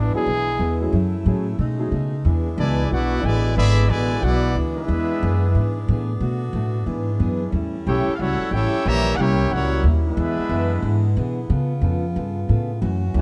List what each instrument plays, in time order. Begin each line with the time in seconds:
Already playing: upright bass A1, saxophone section D3 G#3 B3 E4, steel-string acoustic guitar E3 B3 D4 G#4, trumpet D4
0.14 grand piano F#3 B3 D4 E4 G#4, trumpet G#4, muted upright bass stroke
0.26 upright bass B1, steel-string acoustic guitar E3 B3 D4 G#4
0.59 upright bass E2, steel-string acoustic guitar E3 B3 D4 G#4
0.81 grand piano F#3 A3 C#4 E4 G#4
0.92 upright bass F#2, saxophone section C#3 F#3 A3, steel-string acoustic guitar F#3 C#4 E4 A4
1.25 upright bass A2, steel-string acoustic guitar F#3 C#4 E4 A4, grand piano F#3 A3 C#4 E4 G#4
1.58 steel-string acoustic guitar B2 A3 D#4 G#4, upright bass B2, saxophone section G#3 A3 D#4
1.79 grand piano F#3 A3 C#4 D#4 G#4
1.92 steel-string acoustic guitar B2 A3 D#4 G#4, upright bass C#3
2.25 upright bass E2, steel-string acoustic guitar E3 B3 D4 G#4, saxophone section G#3 B3 D4 E4
2.57 upright bass C#2, trombone section B2 G#3 D4, steel-string acoustic guitar E3 B3 D4 G#4, trumpet section E4 B4 D5 G#5
2.91 upright bass B1, steel-string acoustic guitar E3 B3 D4, trombone section B3 D4 F#4, trumpet section E4 B4 D5 F#5
2.95 steel-string acoustic guitar G#4
3.23 upright bass A1, trombone section B2 D3 G#3, steel-string acoustic guitar E3 B3 D4, trumpet section E4 B4 D5 G#5
3.27 steel-string acoustic guitar G#4
3.56 upright bass G#1, trombone section D3 G#3 B3, steel-string acoustic guitar E3 B3 D4, trumpet section G#4 D5 E5 B5
3.60 steel-string acoustic guitar G#4
3.89 upright bass A1, trombone section B2 D3 G#3, steel-string acoustic guitar E3 B3 D4 G#4, trumpet section E4 B4 D5 G#5
4.22 upright bass B1, steel-string acoustic guitar E3 B3 D4 G#4, trombone section B3 D4 F#4, trumpet section E4 B4 D5 F#5
4.55 upright bass D2, steel-string acoustic guitar E3 B3 D4 G#4
4.75 trombone section G#3 B3 E4, trumpet section D4 G#4 B4 E5
4.88 upright bass E2, steel-string acoustic guitar E3 B3 D4
4.92 steel-string acoustic guitar G#4
5.23 upright bass F#2, steel-string acoustic guitar E3 B3 D4 G#4
5.55 upright bass G#2, steel-string acoustic guitar E3 B3 D4 G#4
5.88 upright bass A2, steel-string acoustic guitar E3 B3 D4 G#4
6.20 steel-string acoustic guitar B2 A3 D4 F#4, upright bass B2, saxophone section A3 F#4
6.53 upright bass A2, steel-string acoustic guitar B2 A3 D4 F#4
6.86 upright bass G#2, steel-string acoustic guitar E3 B3 D4 G#4, saxophone section G#3 E4
7.19 upright bass F#2, steel-string acoustic guitar E3 B3 D4 G#4
7.51 upright bass E2, steel-string acoustic guitar A2 G3 C#4, saxophone section G3 A3 C#4
7.56 steel-string acoustic guitar E4
7.87 upright bass B1, steel-string acoustic guitar A2 G3 C#4 E4, trombone section C#4 E4 G4, trumpet section E4 A4 C#5 G5
8.07 muted upright bass stroke
8.15 trumpet section F5
8.19 upright bass C#2, steel-string acoustic guitar A2 G3 C#4 E4, trombone section G3 C#4 F#4, trumpet section E4 A4 C#5 F#5
8.40 muted upright bass stroke
8.51 upright bass A1, steel-string acoustic guitar A2 G3 C#4 E4, trombone section C#4 E4 G4, trumpet section E4 A4 C#5 G5
8.72 muted upright bass stroke
8.86 upright bass A#1, steel-string acoustic guitar A#2 G3 C#4 E4, trombone section E3 G3 A#3, saxophone section A#3, trumpet section G4 C#5 E5 A#5
9.15 upright bass C2, steel-string acoustic guitar A#2 G3, trombone section C#4 E4 G4, trumpet section F#5
9.19 steel-string acoustic guitar C#4 E4, trumpet section E4 A#4 C#5 G5
9.51 upright bass C#2, steel-string acoustic guitar A#2 G3 C#4, trombone section G3 C#4 F#4, trumpet section E4 A#4 C#5 F#5
9.55 steel-string acoustic guitar E4
9.83 upright bass D#2, steel-string acoustic guitar A#2 G3 C#4 E4
10.07 trombone section G#3 B3 E4, trumpet section D4 G#4 B4 E5
10.16 upright bass E2, saxophone section D3 G#3 B3, steel-string acoustic guitar E3 B3 D4 G#4
10.39 muted upright bass stroke
10.49 upright bass F#2, steel-string acoustic guitar E3 B3 D4 G#4
10.82 upright bass G#2, steel-string acoustic guitar E3 B3 D4 G#4
11.16 upright bass B2, steel-string acoustic guitar E3 B3 D4 G#4
11.48 steel-string acoustic guitar C#3 B3 F4 A4, saxophone section C#3 F4, upright bass C#3
11.81 upright bass F2, steel-string acoustic guitar C#3 B3 F4 A4
12.15 upright bass G2, steel-string acoustic guitar C#3 B3 F4 A4
12.47 upright bass A2, steel-string acoustic guitar C#3 B3 F4 A4
12.81 steel-string acoustic guitar F#2 E3 A3 C#4, upright bass F#2, saxophone section E3 C#4 F#4
13.14 upright bass D2, steel-string acoustic guitar F#2 E3 A3 C#4, trombone section E3 A3 C#4, trumpet section C#5
13.18 trumpet section A3 F#4